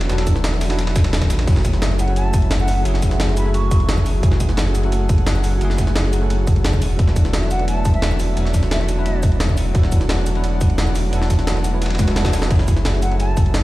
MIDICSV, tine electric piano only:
0, 0, Header, 1, 2, 480
1, 0, Start_track
1, 0, Key_signature, 3, "minor"
1, 0, Tempo, 344828
1, 129, Time_signature, 4, 2, 24, 8
1, 18976, End_track
2, 0, Start_track
2, 0, Title_t, "Tine electric piano"
2, 0, Program_c, 0, 4
2, 0, Control_c, 0, 64, 127
2, 0, Note_on_c, 0, 54, 88
2, 0, Note_on_c, 0, 59, 79
2, 0, Note_on_c, 0, 62, 82
2, 0, Note_on_c, 0, 64, 78
2, 0, Note_on_c, 0, 69, 103
2, 0, Note_on_c, 0, 71, 93
2, 87, Note_off_c, 0, 54, 0
2, 87, Note_on_c, 0, 54, 90
2, 110, Note_off_c, 0, 59, 0
2, 110, Note_on_c, 0, 59, 81
2, 134, Note_off_c, 0, 62, 0
2, 134, Note_on_c, 0, 62, 83
2, 157, Note_off_c, 0, 64, 0
2, 157, Note_on_c, 0, 64, 87
2, 181, Note_off_c, 0, 69, 0
2, 181, Note_on_c, 0, 69, 102
2, 920, Note_off_c, 0, 54, 0
2, 932, Note_off_c, 0, 59, 0
2, 943, Note_off_c, 0, 62, 0
2, 952, Note_on_c, 0, 54, 84
2, 955, Note_off_c, 0, 64, 0
2, 964, Note_on_c, 0, 59, 78
2, 967, Note_off_c, 0, 69, 0
2, 975, Note_on_c, 0, 62, 80
2, 987, Note_on_c, 0, 64, 78
2, 998, Note_off_c, 0, 71, 0
2, 998, Note_on_c, 0, 71, 93
2, 1137, Note_off_c, 0, 54, 0
2, 1144, Note_off_c, 0, 59, 0
2, 1149, Note_off_c, 0, 62, 0
2, 1155, Note_off_c, 0, 64, 0
2, 1161, Note_off_c, 0, 71, 0
2, 2005, Note_on_c, 0, 54, 90
2, 2027, Note_on_c, 0, 57, 82
2, 2050, Note_on_c, 0, 61, 82
2, 2070, Control_c, 0, 64, 0
2, 2072, Note_on_c, 0, 64, 81
2, 2097, Note_on_c, 0, 68, 97
2, 2338, Control_c, 0, 64, 127
2, 2839, Note_off_c, 0, 54, 0
2, 2850, Note_off_c, 0, 57, 0
2, 2861, Note_off_c, 0, 61, 0
2, 2870, Note_on_c, 0, 54, 84
2, 2873, Note_off_c, 0, 64, 0
2, 2879, Note_on_c, 0, 57, 81
2, 2885, Note_off_c, 0, 68, 0
2, 2893, Note_on_c, 0, 61, 79
2, 2905, Note_on_c, 0, 64, 83
2, 2917, Note_on_c, 0, 69, 98
2, 3057, Note_off_c, 0, 54, 0
2, 3061, Note_off_c, 0, 57, 0
2, 3068, Note_off_c, 0, 61, 0
2, 3074, Note_off_c, 0, 64, 0
2, 3080, Note_off_c, 0, 69, 0
2, 3923, Note_on_c, 0, 54, 93
2, 3945, Note_on_c, 0, 57, 83
2, 3971, Note_on_c, 0, 61, 84
2, 3993, Note_on_c, 0, 64, 81
2, 4016, Note_on_c, 0, 68, 102
2, 4758, Note_off_c, 0, 54, 0
2, 4769, Note_off_c, 0, 57, 0
2, 4782, Note_off_c, 0, 61, 0
2, 4785, Note_on_c, 0, 54, 88
2, 4793, Note_off_c, 0, 64, 0
2, 4795, Note_on_c, 0, 57, 84
2, 4805, Note_off_c, 0, 68, 0
2, 4808, Note_on_c, 0, 61, 82
2, 4820, Note_on_c, 0, 64, 81
2, 4832, Note_on_c, 0, 69, 94
2, 4974, Note_off_c, 0, 54, 0
2, 4979, Note_off_c, 0, 57, 0
2, 4986, Note_off_c, 0, 61, 0
2, 4992, Note_off_c, 0, 64, 0
2, 4998, Note_off_c, 0, 69, 0
2, 5844, Note_on_c, 0, 54, 87
2, 5867, Note_on_c, 0, 57, 82
2, 5891, Note_on_c, 0, 61, 87
2, 5917, Note_on_c, 0, 64, 85
2, 5939, Note_on_c, 0, 68, 99
2, 6679, Note_off_c, 0, 54, 0
2, 6690, Note_off_c, 0, 57, 0
2, 6702, Note_off_c, 0, 61, 0
2, 6708, Note_on_c, 0, 54, 88
2, 6715, Note_off_c, 0, 64, 0
2, 6718, Note_on_c, 0, 57, 81
2, 6726, Note_off_c, 0, 68, 0
2, 6730, Note_on_c, 0, 61, 81
2, 6742, Note_on_c, 0, 64, 80
2, 6754, Note_on_c, 0, 69, 98
2, 6896, Note_off_c, 0, 54, 0
2, 6900, Note_off_c, 0, 57, 0
2, 6907, Note_off_c, 0, 61, 0
2, 6913, Note_off_c, 0, 64, 0
2, 6919, Note_off_c, 0, 69, 0
2, 7764, Note_on_c, 0, 54, 93
2, 7786, Note_on_c, 0, 57, 83
2, 7811, Note_on_c, 0, 61, 84
2, 7834, Note_on_c, 0, 64, 82
2, 7859, Note_on_c, 0, 68, 102
2, 8599, Note_off_c, 0, 54, 0
2, 8610, Note_off_c, 0, 57, 0
2, 8622, Note_off_c, 0, 61, 0
2, 8627, Note_on_c, 0, 54, 86
2, 8634, Note_off_c, 0, 64, 0
2, 8640, Note_on_c, 0, 57, 80
2, 8646, Note_off_c, 0, 68, 0
2, 8651, Note_on_c, 0, 61, 78
2, 8663, Note_on_c, 0, 64, 79
2, 8676, Note_on_c, 0, 69, 95
2, 8815, Note_off_c, 0, 54, 0
2, 8822, Note_off_c, 0, 57, 0
2, 8827, Note_off_c, 0, 61, 0
2, 8833, Note_off_c, 0, 64, 0
2, 8840, Note_off_c, 0, 69, 0
2, 9510, Control_c, 0, 64, 0
2, 9686, Note_on_c, 0, 54, 91
2, 9709, Note_on_c, 0, 59, 80
2, 9733, Note_on_c, 0, 62, 80
2, 9748, Control_c, 0, 64, 127
2, 9756, Note_on_c, 0, 64, 81
2, 9779, Note_on_c, 0, 69, 98
2, 10519, Note_off_c, 0, 54, 0
2, 10531, Note_off_c, 0, 59, 0
2, 10543, Note_off_c, 0, 62, 0
2, 10546, Note_on_c, 0, 54, 87
2, 10555, Note_off_c, 0, 64, 0
2, 10557, Note_on_c, 0, 59, 78
2, 10566, Note_off_c, 0, 69, 0
2, 10570, Note_on_c, 0, 62, 80
2, 10581, Note_on_c, 0, 64, 83
2, 10593, Note_on_c, 0, 71, 94
2, 10734, Note_off_c, 0, 54, 0
2, 10740, Note_off_c, 0, 59, 0
2, 10747, Note_off_c, 0, 62, 0
2, 10752, Note_off_c, 0, 64, 0
2, 10758, Note_off_c, 0, 71, 0
2, 11600, Note_on_c, 0, 54, 90
2, 11625, Note_on_c, 0, 59, 84
2, 11648, Note_on_c, 0, 62, 80
2, 11671, Note_on_c, 0, 64, 81
2, 11695, Note_on_c, 0, 69, 104
2, 12437, Note_off_c, 0, 54, 0
2, 12449, Note_off_c, 0, 59, 0
2, 12461, Note_off_c, 0, 62, 0
2, 12467, Note_on_c, 0, 54, 83
2, 12472, Note_off_c, 0, 64, 0
2, 12478, Note_on_c, 0, 59, 80
2, 12484, Note_off_c, 0, 69, 0
2, 12491, Note_on_c, 0, 62, 79
2, 12502, Note_on_c, 0, 64, 78
2, 12514, Note_on_c, 0, 71, 98
2, 12655, Note_off_c, 0, 54, 0
2, 12661, Note_off_c, 0, 59, 0
2, 12667, Note_off_c, 0, 62, 0
2, 12672, Note_off_c, 0, 64, 0
2, 12678, Note_off_c, 0, 71, 0
2, 13525, Note_on_c, 0, 54, 94
2, 13548, Note_on_c, 0, 59, 86
2, 13571, Note_on_c, 0, 62, 84
2, 13594, Note_on_c, 0, 64, 80
2, 13619, Note_on_c, 0, 69, 103
2, 14359, Note_off_c, 0, 54, 0
2, 14371, Note_off_c, 0, 59, 0
2, 14382, Note_off_c, 0, 62, 0
2, 14388, Note_on_c, 0, 54, 86
2, 14394, Note_off_c, 0, 64, 0
2, 14399, Note_on_c, 0, 59, 78
2, 14406, Note_off_c, 0, 69, 0
2, 14409, Note_on_c, 0, 62, 82
2, 14422, Note_on_c, 0, 64, 80
2, 14434, Note_on_c, 0, 71, 99
2, 14576, Note_off_c, 0, 54, 0
2, 14581, Note_off_c, 0, 59, 0
2, 14586, Note_off_c, 0, 62, 0
2, 14592, Note_off_c, 0, 64, 0
2, 14598, Note_off_c, 0, 71, 0
2, 15442, Note_on_c, 0, 54, 89
2, 15464, Note_on_c, 0, 59, 86
2, 15489, Note_on_c, 0, 62, 84
2, 15513, Note_on_c, 0, 64, 84
2, 15537, Note_on_c, 0, 69, 102
2, 16277, Note_off_c, 0, 54, 0
2, 16288, Note_off_c, 0, 59, 0
2, 16301, Note_off_c, 0, 62, 0
2, 16305, Note_on_c, 0, 54, 84
2, 16313, Note_off_c, 0, 64, 0
2, 16318, Note_on_c, 0, 59, 78
2, 16325, Note_off_c, 0, 69, 0
2, 16330, Note_on_c, 0, 62, 78
2, 16341, Note_on_c, 0, 64, 77
2, 16352, Note_on_c, 0, 71, 92
2, 16494, Note_off_c, 0, 54, 0
2, 16500, Note_off_c, 0, 59, 0
2, 16506, Note_off_c, 0, 62, 0
2, 16512, Note_off_c, 0, 64, 0
2, 16518, Note_off_c, 0, 71, 0
2, 16762, Note_on_c, 0, 54, 99
2, 16786, Note_on_c, 0, 59, 89
2, 16809, Note_on_c, 0, 62, 86
2, 16832, Note_on_c, 0, 64, 88
2, 16857, Note_on_c, 0, 69, 102
2, 17345, Note_off_c, 0, 54, 0
2, 17361, Note_on_c, 0, 54, 92
2, 17369, Note_off_c, 0, 59, 0
2, 17380, Note_off_c, 0, 62, 0
2, 17386, Note_on_c, 0, 57, 84
2, 17392, Note_off_c, 0, 64, 0
2, 17404, Note_off_c, 0, 69, 0
2, 17409, Note_on_c, 0, 61, 82
2, 17430, Control_c, 0, 64, 0
2, 17433, Note_on_c, 0, 64, 83
2, 17455, Note_on_c, 0, 68, 101
2, 17649, Control_c, 0, 64, 127
2, 18197, Note_off_c, 0, 54, 0
2, 18210, Note_off_c, 0, 57, 0
2, 18221, Note_off_c, 0, 61, 0
2, 18227, Note_on_c, 0, 54, 83
2, 18233, Note_off_c, 0, 64, 0
2, 18238, Note_on_c, 0, 57, 82
2, 18244, Note_off_c, 0, 68, 0
2, 18249, Note_on_c, 0, 61, 75
2, 18262, Note_on_c, 0, 64, 80
2, 18271, Note_on_c, 0, 69, 95
2, 18415, Note_off_c, 0, 54, 0
2, 18420, Note_off_c, 0, 57, 0
2, 18426, Note_off_c, 0, 61, 0
2, 18432, Note_off_c, 0, 64, 0
2, 18437, Note_off_c, 0, 69, 0
2, 18976, End_track
0, 0, End_of_file